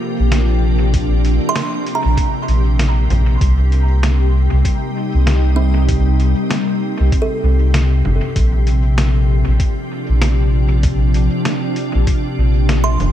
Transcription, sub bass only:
0.20 A#1
2.05 A#1
2.48 A#1
3.10 A#1
3.41 C2
4.52 C2
5.14 C2
7.00 C2
7.43 C2
8.05 G1
8.36 A#1
9.47 A#1
10.09 A#1
11.95 A#1
12.38 A#1
13.00 F1

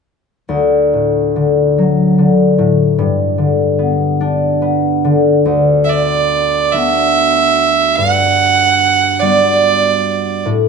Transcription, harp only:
0.49 D2
0.94 A2
1.36 D3
1.78 F#3
2.18 D3
2.58 A2
2.99 G2
3.38 D3
3.79 B3
4.21 D4
4.62 B3
5.04 D3
5.45 D2
6.74 B3 D4 F#4
7.98 G2
9.22 G3 B3 F#4
10.45 A2

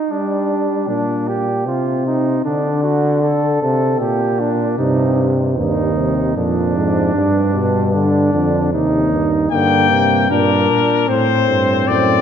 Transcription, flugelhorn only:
Already playing: D#4
0.11 D4
0.89 D4
1.28 G4
1.67 F4
2.06 D#4
2.45 D4
2.83 F#4
3.23 A4
3.62 A4
4.00 G4
4.40 D4
4.79 D#4
5.58 D#4
6.37 D4
7.93 D4
8.73 D#4
9.51 A#3
10.30 D4
11.08 C4

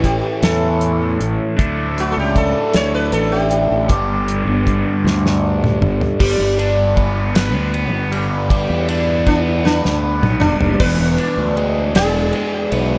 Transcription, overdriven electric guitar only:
Already playing: A2 E3 A3 C#4 E4
1.57 D3 A3 D4 E4
3.89 G2 D3 G3 B3 D4 G4
6.20 G3
6.59 D4
6.97 B3
7.35 B4
7.73 B3
8.12 G3
8.49 G3
8.89 D4
9.27 B3
9.65 B4
10.04 B3
10.43 G3
10.80 E2
11.18 D4
11.56 G#3
11.95 D4
12.34 G#3
12.72 B3

